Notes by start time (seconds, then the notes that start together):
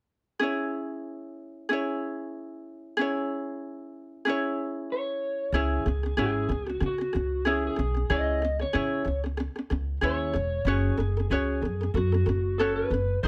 0.39 C#4 E4 G#4 C#5
1.69 C#4 E4 G#4 C#5
2.97 C#4 E4 G#4
3.01 C#5
4.25 C#4 E4 G#4
4.29 C#5
4.92 C#5
5.52 C#2 C#4 E4 G#4 C#5
5.86 C#2 C#4 G#4
6.03 C#4 G#4
6.17 G#1 C#4 E4 G#4 C#5
6.21 G#4
6.49 C#2 C#4 G#4
6.66 C#4 F#4 G#4
6.80 C#3 C#4 G#4
6.86 F#4
6.98 C#4 G#4
7.13 C#2 C#4 G#4
7.45 C#4 E4 G#4 C#5
7.49 G#4
7.67 G#4
7.76 B1 C#4 G#4
7.94 C#4 G#4
8.10 C#2 C#4 E4 G#4 C#5 D#5
8.42 C#4 G#4
8.59 C#4 G#4 C#5
8.73 C#3 C#4 E4 G#4 C#5
9.05 C#2 C#4 G#4
9.24 C#4 G#4
9.37 C#4 G#4
9.56 C#4 G#4
9.70 C#2 C#4 G#4
10.01 D#2 C#4 E4 G#4 C#5
10.34 E1 C#4 G#4
10.65 F#1 C#4 F#4 G#4 C#5
10.97 F#1 C#4 A4
11.17 C#4 A4
11.30 C#2 C#4 F#4 G#4 C#5
11.62 F#2 C#4 A4
11.81 C#4 A4
11.94 F#2 C#4 F#4 A4
12.12 C#4 A4
12.26 F#1 C#4 A4
12.58 C#4 F#4 A4 C#5
12.76 B4
12.90 F#1 C#4 A4
13.23 G#1 D#4 C5